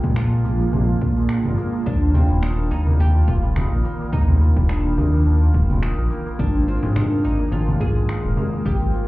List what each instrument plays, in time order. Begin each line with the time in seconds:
Already playing: ambient pad G#3 A#3 F4 D5 F5, santur A#3 C4 D4 F4 A#4, oud G4
0.03 analog synth bass A#2, santur G#3, kick, low conga, shaker
0.16 santur D4, oud F4, finger snap
0.31 santur A#4
0.44 analog synth bass A#1, santur A#3, shaker
0.60 santur A#3, shaker
0.72 analog synth bass A#1, santur D4, low conga, shaker
0.88 santur F4
1.01 analog synth bass A#2, santur F4, kick, shaker
1.17 santur G#3, shaker
1.29 santur D4, finger snap, shaker
1.44 analog synth bass G#1, santur A#4, low conga
1.57 santur A#3, shaker
1.73 santur A#3, shaker
1.86 analog synth bass D#2, santur A#3, oud D4, kick, shaker
2.02 ambient pad D#3, santur C4
2.14 oud C4, santur F4, low conga, shaker
2.25 ambient pad A#4
2.30 analog synth bass D#1, santur G3, shaker
2.42 oud D4, santur D#4, finger snap, shaker
2.58 santur A#4
2.70 analog synth bass D#2, santur A#3, oud D#4, shaker
2.86 santur A#3, low conga, shaker
2.99 analog synth bass D#2, santur D4, oud G4, shaker
3.15 santur F4
3.27 analog synth bass D#1, santur F4, oud F4, kick, shaker
3.32 ambient pad G5
3.43 santur G3, shaker
3.56 santur D#4, finger snap, low conga, shaker
3.71 analog synth bass A#1, santur A#4
3.84 santur A#3, shaker
4.00 santur A#3, shaker
4.13 analog synth bass D#2, santur A#3, oud D#4, kick, shaker
4.28 santur C4, low conga
4.41 santur F4, shaker
4.56 analog synth bass D#1, santur G3, kick, shaker
4.69 oud D4, santur D#4, finger snap, shaker
4.85 santur A#4
4.98 analog synth bass D#2, santur A#3, low conga, shaker
5.13 santur A#3, shaker
5.26 analog synth bass D#2, santur D4, shaker
5.41 santur F4
5.54 analog synth bass D#1, santur F4, kick, shaker
5.69 santur G3, low conga, shaker
5.82 santur D#4, finger snap, shaker
5.98 analog synth bass A#1, santur A#4
6.10 santur A#3, shaker
6.26 santur A#3, shaker
6.39 analog synth bass G#1, ambient pad G#3, santur A#3, oud D4, kick, shaker
6.54 santur C4
6.67 oud C4, santur F4, shaker
6.83 analog synth bass G#2, santur G#3, frame drum, shaker
6.96 oud D4, santur D#4, finger snap, low conga, shaker
7.11 santur A#4
7.24 analog synth bass G#1, santur A#3, oud D#4, shaker
7.39 santur A#3, shaker
7.52 analog synth bass G#1, santur D4, oud F4, frame drum, shaker
7.68 santur F4, low conga
7.80 analog synth bass G#2, santur F4, oud G#4, kick, frame drum, shaker
7.92 santur G#3, ambient pad C5
7.97 shaker
8.09 santur D#4, finger snap, shaker
8.24 analog synth bass D#1, santur A#4
8.37 santur A#3, low conga, shaker
8.53 santur A#3, shaker
8.65 analog synth bass G#1, santur A#3, oud G4, kick, shaker
8.81 santur C4
8.94 santur F4, shaker